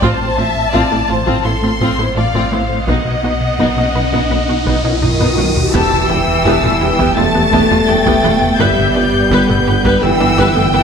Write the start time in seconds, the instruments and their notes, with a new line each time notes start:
0.02 sub bass A1, double bass section A1, cello section A2, analog synth bass A2, synth arpeggio sound F3, viola section C4 F4, violin section C5 A5, taiko, riser
0.21 analog synth bass A2
0.37 double bass section A1, cello section A2, analog synth bass A3, viola section C4 F4, synth arpeggio sound C4, violin section E5
0.56 analog synth bass A2
0.73 double bass section A1, analog synth bass A2, cello section A2, synth arpeggio sound F3, viola section C4 F4, violin section D5, taiko
0.91 cello section A2, analog synth bass A2, synth arpeggio sound A3, viola section B3 E4
1.09 double bass section A1, cello section A2, analog synth bass A2, viola section C4 F4, synth arpeggio sound F4, violin section C5
1.26 cello section A2, analog synth bass A2, synth arpeggio sound F3, viola section C4 F4, taiko
1.44 double bass section A1, analog synth bass A2, cello section A2, viola section B3 E4, synth arpeggio sound F4, violin section A4 C6
1.62 cello section A2, analog synth bass A3, viola section C4 F4, synth arpeggio sound C4
1.81 double bass section A1, cello section A2, analog synth bass A2, synth arpeggio sound F3, viola section C4 F4, violin section C5, taiko
1.98 analog synth bass A2, cello section A2, synth arpeggio sound A3, viola section B3 E4
2.16 double bass section A1, analog synth bass A2, cello section A2, synth arpeggio sound A3, viola section C4 F4, violin section D5 F5
2.34 analog synth bass A2, cello section A2, synth arpeggio sound F3, viola section C4 F4, taiko
2.52 double bass section A1, cello section A2, analog synth bass A3, viola section B3 E4, synth arpeggio sound C4, violin section C5
2.69 analog synth bass A2
2.87 sub bass B1, double bass section B1, analog synth bass B2, cello section B2, viola section B3 D#4, synth arpeggio sound B3, violin section D#5 F#5, taiko
3.05 analog synth bass B2
3.23 double bass section B1, cello section B2, analog synth bass B3, viola section B3 D#4, synth arpeggio sound F#4
3.41 analog synth bass B2
3.59 double bass section B1, analog synth bass B2, cello section B2, synth arpeggio sound B3, viola section B3 D#4, taiko
3.77 analog synth bass B2, cello section B2, viola section A#3 C#4, synth arpeggio sound D#4
3.94 double bass section B1, analog synth bass B2, cello section B2, viola section B3 D#4, synth arpeggio sound B4
4.12 analog synth bass B2, cello section B2, viola section B3 D#4, synth arpeggio sound B3, taiko
4.30 double bass section B1, analog synth bass B2, cello section B2, viola section A#3 C#4, synth arpeggio sound B4
4.48 cello section B2, analog synth bass B3, viola section B3 D#4, synth arpeggio sound F#4
4.65 double bass section B1, analog synth bass B2, cello section B2, synth arpeggio sound B3, viola section B3 D#4, taiko
4.83 analog synth bass B2, cello section B2, viola section A#3 C#4, synth arpeggio sound D#4
5.01 double bass section B1, analog synth bass B2, cello section B2 D#3, french horn section D#3, viola section B3 D#4, synth arpeggio sound D#4, violin section D#6, taiko low-mid
5.19 analog synth bass B2, cello section B2, viola section B3 D#4, synth arpeggio sound B3, taiko low-mid
5.37 double bass section B1, cello section B2, viola section A#3 C#4, analog synth bass B3, synth arpeggio sound F#4, taiko high
5.56 analog synth bass B2, taiko low
5.73 sub bass E1, tuba E1, analog synth bass E2, double bass section E2, cello section E3, synth arpeggio sound E3, french horn section E3, trombone section G3 B3, viola section B3 G4, violin section A5 E6, taiko, impact
5.91 analog synth bass E2, taiko mid
6.10 tuba E1, double bass section E2, analog synth bass E3, viola section B3 G4, synth arpeggio sound B3, violin section G5
6.28 analog synth bass E2
6.45 tuba E1, analog synth bass E2, double bass section E2, synth arpeggio sound E3, viola section B3 G4, violin section A5, taiko
6.63 analog synth bass E2, double bass section E2, synth arpeggio sound G3, viola section A3 F4, taiko mid
6.80 tuba E1, analog synth bass E2, double bass section E2, viola section B3 G4, synth arpeggio sound E4, violin section G5
6.99 analog synth bass E2, double bass section E2, synth arpeggio sound E3, viola section B3 G4, taiko
7.15 tuba E1, analog synth bass E2, double bass section E2, french horn section A3, cello section A3, viola section A3 F4, synth arpeggio sound E4, violin section A5 A6
7.35 double bass section E2, analog synth bass E3, synth arpeggio sound B3, viola section B3 G4
7.52 tuba E1, analog synth bass E2, double bass section E2, synth arpeggio sound E3, viola section B3 G4, taiko
7.70 double bass section E2, analog synth bass E2, synth arpeggio sound G3, viola section A3 F4
7.88 tuba E1, analog synth bass E2, double bass section E2, synth arpeggio sound G3, viola section B3 G4, violin section G5
8.06 analog synth bass E2, double bass section E2, synth arpeggio sound E3, viola section B3 G4, taiko
8.24 tuba E1, double bass section E2, analog synth bass E3, viola section A3 F4, synth arpeggio sound B3
8.42 analog synth bass E2, taiko mid
8.59 tuba G1, sub bass G1, double bass section G1, analog synth bass G2, trombone section D3, cello section G3, french horn section G3, synth arpeggio sound G3, viola section B3 B4, violin section E5 G6, taiko
8.78 analog synth bass G2, taiko mid
8.95 tuba G1, double bass section G1, analog synth bass G3, viola section B3 B4, synth arpeggio sound D4, violin section D5
9.14 analog synth bass G2
9.31 tuba G1, double bass section G1, analog synth bass G2, synth arpeggio sound G3, viola section B3 B4, violin section B4, taiko
9.49 double bass section G1, analog synth bass G2, viola section A3 A4, synth arpeggio sound B3, taiko mid
9.67 double bass section G1, tuba G1, analog synth bass G2, viola section B3 B4, synth arpeggio sound G4
9.85 double bass section G1, analog synth bass G2, synth arpeggio sound G3, viola section B3 B4, taiko
10.01 tuba G1, double bass section G1, analog synth bass G2, french horn section E3, cello section E3, viola section A3 A4, synth arpeggio sound G4, violin section G5 E6
10.20 double bass section G1, analog synth bass G3, viola section B3 B4, synth arpeggio sound D4
10.38 double bass section G1, tuba G1, analog synth bass G2, synth arpeggio sound G3, viola section B3 B4, taiko
10.56 double bass section G1, analog synth bass G2, viola section A3 A4, synth arpeggio sound B3
10.73 double bass section G1, tuba G1, analog synth bass G2, cello section E3, french horn section E3, synth arpeggio sound B3, viola section B3 B4, violin section E6